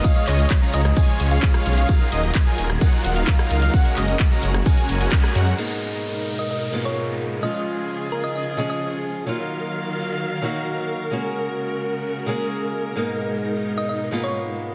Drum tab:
CC |----------------|----------------|----------------|x---------------|
RD |x---x---x---x---|x---x---x---x---|x---x---x---x---|----------------|
HH |x-oxx-oxxxoxxxox|x-oxx-oxxxoxxxox|xooxxxoxxxoxxxox|----------------|
CP |--x-x-------x---|----x-------x---|--x-x-------x---|----------------|
SD |-------r-----r--|-------r-----r--|-------r-----r--|----------------|
BD |o---o---o---o---|o---o---o---o---|o---o---o---o---|----------------|

CC |----------------|----------------|----------------|----------------|
RD |----------------|----------------|----------------|----------------|
HH |----------------|----------------|----------------|----------------|
CP |----------------|----------------|----------------|----------------|
SD |----------------|----------------|----------------|----------------|
BD |----------------|----------------|----------------|----------------|